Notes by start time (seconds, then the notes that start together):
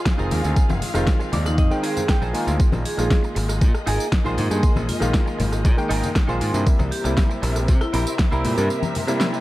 Already playing: D#3 G#3 C4 F4 G#4 F5
0.06 kick, snare, tambourine
0.18 F1 D#3 G#3 C4 D#4 F4 G#4 A#4, tambourine
0.31 D#2, open hi-hat, tambourine, low conga
0.44 D2 D#3 G#3 C4 G#4, tambourine
0.56 kick, tambourine
0.69 F1, tambourine, high conga
0.82 open hi-hat, tambourine, low conga
0.94 F1 D#3 G#3 C4 F4, cross-stick, tambourine
1.07 kick, snare, tambourine
1.20 muted clean electric guitar stroke, tambourine
1.32 D#2 D5, muted clean electric guitar stroke, open hi-hat, tambourine, low conga
1.45 D#4, muted clean electric guitar stroke, cross-stick, tambourine, high conga
1.58 F2 D#4 D#5, kick, tambourine
1.71 D#3 G#3 C4 G5, tambourine
1.83 D#4 F4 G#4 C5 F5, open hi-hat, tambourine
1.96 G#4, tambourine, low conga
2.09 G5, kick, cross-stick, snare, tambourine
2.21 A#1 D#4 F4 G#4 C5, tambourine
2.33 D#3 G#3 A#3 F4 G#5, open hi-hat, tambourine
2.47 D2, tambourine
2.60 A#3 G#4 D#5, kick, tambourine
2.72 A#1, tambourine, high conga
2.85 G#4, open hi-hat, tambourine
2.97 A#1 D#3 G#3 A#3 F4 G#4, cross-stick, tambourine
3.11 kick, snare, tambourine
3.23 muted clean electric guitar stroke, tambourine
3.35 G#1, muted clean electric guitar stroke, open hi-hat, tambourine
3.49 muted clean electric guitar stroke, cross-stick, tambourine
3.61 A#2, kick, tambourine
3.75 cross-stick, tambourine
3.86 G#1 D#4 F4 G#4 A#4, open hi-hat, tambourine
4.00 tambourine
4.12 kick, snare, tambourine
4.24 A#1 D#3 G#3 A#3 D#4 F4 G#4 C5, tambourine
4.38 G#2, open hi-hat, tambourine, low conga
4.50 G2 D#3 G#3 A#3 G#4, tambourine
4.63 muted picked electric bass stroke, kick, tambourine
4.76 A#1, tambourine, high conga
4.89 F4, open hi-hat, tambourine, low conga
5.00 A#1 D#3 G#3 A#3 F4, cross-stick, tambourine
5.14 kick, snare, tambourine
5.26 muted clean electric guitar stroke, tambourine
5.39 G#1, muted clean electric guitar stroke, open hi-hat, tambourine, low conga
5.51 muted clean electric guitar stroke, cross-stick, tambourine
5.65 A#2, kick, tambourine
5.77 D#3 G#3 A#3 G5, tambourine
5.89 G#1 D#4 F4 G#4 A#4, open hi-hat, tambourine
6.03 tambourine, low conga
6.16 kick, cross-stick, snare, tambourine
6.27 A#1 D#3 G#3 A#3 D#4 F4 G#4 C5, tambourine
6.41 G#2, open hi-hat, tambourine
6.54 G2 C3 G3 A#3 E4, tambourine
6.67 C4 A#4 E5, muted picked electric bass stroke, kick, tambourine
6.79 C2, tambourine, high conga
6.91 G4, open hi-hat, tambourine
7.04 C2 C3 G3 A#3 E4 G4, cross-stick, tambourine
7.17 kick, snare, tambourine
7.29 muted clean electric guitar stroke, tambourine
7.42 A#1, muted clean electric guitar stroke, open hi-hat, tambourine
7.55 muted clean electric guitar stroke, cross-stick, tambourine
7.68 C3, kick, tambourine
7.81 E4, cross-stick, tambourine
7.93 A#1 C4 E4 G4 A#4, open hi-hat, tambourine
8.06 tambourine
8.19 kick, snare, tambourine
8.31 C2 C3 G3 A#3 C4 E4 G4 A#4, tambourine
8.45 A#2, open hi-hat, tambourine, low conga
8.57 G2 C3 G3 A#3 A#4, tambourine
8.70 tambourine
8.83 tambourine, high conga
8.95 open hi-hat, tambourine, low conga
9.07 C3 G3 A#3 E4, cross-stick, tambourine
9.21 snare, tambourine
9.33 muted clean electric guitar stroke, tambourine